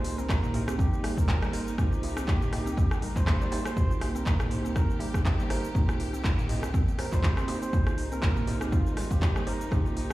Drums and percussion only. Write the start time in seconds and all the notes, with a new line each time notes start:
0.04 open hi-hat, djembe tone
0.19 shaker
0.29 kick, cross-stick, clap, djembe tone, shaker
0.43 mid tom, shaker
0.54 mid tom, open hi-hat, djembe tone
0.68 cross-stick, shaker
0.78 kick, djembe tone, shaker
0.93 shaker
1.04 cross-stick, open hi-hat, djembe tone
1.18 kick, shaker
1.28 kick, clap, djembe slap, djembe tone, shaker
1.42 cross-stick, shaker
1.53 open hi-hat, djembe tone
1.68 shaker
1.78 kick, cross-stick, mid tom, djembe tone, shaker
1.92 shaker
2.03 open hi-hat, djembe tone
2.17 cross-stick, shaker
2.28 kick, clap, djembe tone, shaker
2.42 mid tom, shaker
2.53 cross-stick, mid tom, open hi-hat, djembe tone
2.67 shaker
2.77 kick, djembe tone, shaker
2.91 cross-stick, shaker
3.02 open hi-hat, djembe tone
3.16 kick, clap, shaker
3.27 kick, cross-stick, clap, djembe tone, shaker
3.41 shaker
3.52 open hi-hat, djembe slap, djembe tone
3.65 cross-stick, shaker
3.77 kick, mid tom, djembe tone, shaker
3.91 shaker
4.01 cross-stick, open hi-hat, djembe tone
4.16 shaker
4.26 kick, clap, djembe tone, shaker
4.40 cross-stick, mid tom, shaker
4.51 mid tom, open hi-hat, djembe tone
4.65 shaker
4.76 kick, cross-stick, djembe tone, shaker
4.90 shaker
5.00 open hi-hat, djembe tone
5.14 kick, cross-stick, shaker
5.25 kick, clap, djembe slap, djembe tone, shaker
5.40 shaker
5.50 cross-stick, open hi-hat, djembe tone
5.64 shaker
5.75 kick, mid tom, djembe tone, shaker
5.89 cross-stick, shaker
6.00 open hi-hat, djembe tone
6.14 shaker
6.24 kick, cross-stick, clap, djembe tone, shaker
6.38 mid tom, shaker
6.49 mid tom, open hi-hat, djembe tone
6.63 cross-stick, shaker
6.74 kick, djembe tone, shaker
6.88 shaker
6.99 cross-stick, open hi-hat, djembe tone
7.12 kick, clap, shaker
7.23 kick, clap, djembe tone, shaker
7.37 cross-stick, shaker
7.48 open hi-hat, djembe slap, djembe tone
7.62 shaker
7.73 kick, mid tom, djembe tone, shaker
7.87 cross-stick, shaker
7.98 open hi-hat, djembe tone
8.12 shaker
8.22 kick, cross-stick, clap, djembe tone, shaker
8.36 mid tom, shaker
8.47 mid tom, open hi-hat, djembe tone
8.61 cross-stick, shaker
8.72 kick, djembe tone, shaker
8.86 shaker
8.97 cross-stick, open hi-hat, djembe tone
9.11 kick, shaker
9.22 kick, clap, djembe slap, djembe tone, shaker
9.36 cross-stick, shaker
9.47 open hi-hat, djembe tone
9.61 shaker
9.71 kick, cross-stick, mid tom, djembe tone, shaker
9.86 shaker
9.97 open hi-hat, djembe tone